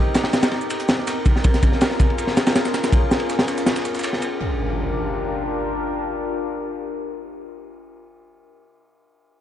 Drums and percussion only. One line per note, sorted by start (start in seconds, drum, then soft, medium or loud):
0.14 snare loud
0.14 ride medium
0.14 shaker medium
0.24 snare loud
0.24 ride medium
0.33 snare loud
0.33 ride medium
0.33 shaker medium
0.43 snare medium
0.43 snare loud
0.43 ride medium
0.43 shaker medium
0.52 snare soft
0.52 ride medium
0.61 shaker medium
0.70 ride medium
0.70 shaker medium
0.80 closed hi-hat soft
0.89 snare loud
0.89 ride medium
0.89 shaker medium
0.99 snare soft
1.07 snare loud
1.07 ride medium
1.07 shaker medium
1.26 kick medium
1.26 ride medium
1.26 shaker medium
1.35 snare soft
1.44 kick loud
1.44 ride medium
1.44 shaker medium
1.54 snare soft
1.54 closed hi-hat soft
1.63 kick medium
1.63 ride medium
1.63 shaker medium
1.72 snare soft
1.81 snare loud
1.81 ride medium
1.81 shaker medium
1.91 snare soft
1.99 kick medium
1.99 ride medium
1.99 shaker medium
2.10 ride soft
2.18 ride medium
2.18 shaker medium
2.27 snare soft
2.37 snare loud
2.37 ride medium
2.37 shaker medium
2.47 snare loud
2.47 snare medium
2.47 ride medium
2.47 shaker medium
2.56 snare loud
2.56 ride medium
2.56 shaker medium
2.65 snare medium
2.65 snare soft
2.65 shaker medium
2.74 snare soft
2.74 snare loud
2.74 ride medium
2.74 shaker medium
2.84 snare soft
2.84 snare loud
2.84 shaker medium
2.92 kick loud
2.92 ride medium
2.92 shaker medium
3.11 snare loud
3.11 shaker medium
3.20 ride medium
3.30 snare loud
3.30 shaker medium
3.39 snare medium
3.39 closed hi-hat soft
3.48 snare medium
3.48 ride medium
3.48 shaker medium
3.58 snare medium
3.58 shaker medium
3.66 snare loud
3.66 shaker medium
3.76 snare medium
3.76 ride medium
3.76 shaker medium
3.85 snare medium
3.85 shaker medium
3.95 snare medium
3.95 shaker medium
3.99 snare medium
3.99 shaker medium
4.04 snare loud
4.04 ride medium
4.04 shaker medium
4.13 snare soft
4.22 ride medium
4.22 shaker medium